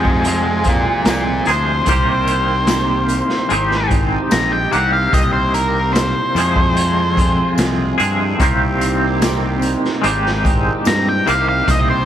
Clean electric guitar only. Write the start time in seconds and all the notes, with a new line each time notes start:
Already playing: F2 C3 F3 G#3 C4 G#4
1.47 F2 C3 F3 G#3 C4 G#4
1.87 C3 D#3 A#3 C4 G4
3.49 G#3 C4 D#4 G4
4.71 C3 D#3 A#3 C4 G4
6.35 F2 C3 F3 G#3 C4 G#4
7.98 F2 C3 F3 G#3 C4 G#4
8.39 C3 D#3 A#3 C4 G4
10.02 G#3 C4 D#4 G4
11.26 C3 D#3 A#3 C4 G4